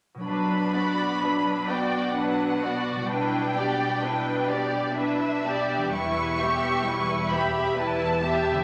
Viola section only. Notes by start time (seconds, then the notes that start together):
0.27 F#3 D4
0.75 B3
1.23 F#3 D4
1.69 B3
2.16 F#3 D4
2.65 B3
3.12 D4 E4
3.57 B3 D4
4.03 D4 E4
4.50 B3 D4
4.96 D4 E4
5.47 B3 D4
5.97 G3 E4
6.44 B3 G4
6.89 G3 E4
7.34 B3 G4
7.78 G3 E4
8.24 B3 G4